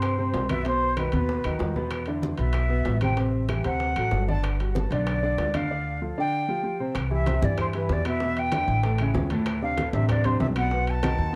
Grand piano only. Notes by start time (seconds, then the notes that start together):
Already playing: C3 C4 C5
0.18 C3 C4 C5
0.50 B2 B3 B4
0.65 B2 B3 C5
0.98 D#3 D#4 F#4
1.13 B2 B3 B4
1.45 D#3 D#4 F#4
1.60 D#3 D#4 F#4
1.76 B2 B3 B4
2.07 D3 D4 E4
2.38 B2 B3 B4
2.69 B2 B3 B4
3.02 C3 C4 C5
3.17 C3 C4 C5
3.49 E3 E4 G4
3.64 C3 C4 C5
3.97 F#3 F#4 A4
4.13 F#3 F#4 A4
4.28 D3 D4 D5
4.60 G3 F#4 G4
4.92 D3 D4 D5
5.23 D3 D4 D5
5.54 D3 D4 D5
5.71 D3 D4 D5
6.02 F3 F4 A4
6.18 D3 D4 D5
6.48 F3 F4 G4
6.63 F3 F4 G4
6.80 C3 C4 C5
7.11 E3 E4 G4
7.26 C3 C4 C5
7.42 E3 E4 G4
7.74 E3 E4 G4
8.05 B2 B3 B4
8.21 B2 B3 B4
8.53 D3 D4 E4
8.84 A2 A3 A4
9.00 C#3 C#4 E4
9.31 A2 A3 A4
9.62 C3 C4 D4
9.77 A2 A3 A4
9.93 C3 C4 D4
10.25 C3 C4 D4
10.56 B2 B3 B4
10.71 B2 B3 B4
11.03 D#3 D#4 F#4